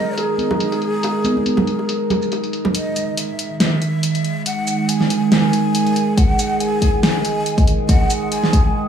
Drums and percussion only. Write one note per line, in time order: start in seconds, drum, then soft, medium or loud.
0.18 closed hi-hat medium
0.18 high bongo soft
0.38 closed hi-hat soft
0.38 high conga medium
0.51 high bongo medium
0.51 low conga medium
0.60 closed hi-hat medium
0.72 closed hi-hat soft
0.72 high bongo soft
0.82 closed hi-hat soft
1.03 closed hi-hat medium
1.03 high bongo medium
1.24 closed hi-hat soft
1.24 high bongo soft
1.24 high conga medium
1.24 shaker medium
1.37 high conga medium
1.46 closed hi-hat medium
1.46 high conga medium
1.57 high bongo medium
1.57 low conga medium
1.67 closed hi-hat medium
1.79 high bongo soft
1.89 closed hi-hat medium
2.10 closed hi-hat soft
2.10 high bongo medium
2.10 low conga medium
2.22 shaker medium
2.32 closed hi-hat medium
2.32 high bongo medium
2.44 closed hi-hat soft
2.53 closed hi-hat soft
2.65 high bongo medium
2.65 low conga medium
2.75 closed hi-hat medium
2.96 closed hi-hat soft
2.96 shaker medium
3.17 closed hi-hat medium
3.39 closed hi-hat medium
3.60 snare loud
3.60 closed hi-hat medium
3.82 closed hi-hat medium
4.03 closed hi-hat medium
4.15 closed hi-hat soft
4.25 closed hi-hat medium
4.46 closed hi-hat medium
4.67 closed hi-hat medium
4.67 shaker medium
4.89 closed hi-hat medium
5.01 snare soft
5.10 closed hi-hat medium
5.32 snare loud
5.32 closed hi-hat medium
5.53 closed hi-hat medium
5.75 closed hi-hat medium
5.87 closed hi-hat soft
5.96 closed hi-hat medium
6.17 kick loud
6.17 closed hi-hat medium
6.39 closed hi-hat medium
6.39 shaker medium
6.60 closed hi-hat medium
6.82 kick medium
6.82 closed hi-hat medium
7.03 snare loud
7.03 closed hi-hat medium
7.25 closed hi-hat medium
7.46 closed hi-hat medium
7.58 kick loud
7.58 closed hi-hat soft
7.67 closed hi-hat medium
7.89 kick loud
7.89 closed hi-hat medium
8.10 closed hi-hat medium
8.10 shaker medium
8.32 closed hi-hat medium
8.44 snare soft
8.53 kick loud
8.53 closed hi-hat medium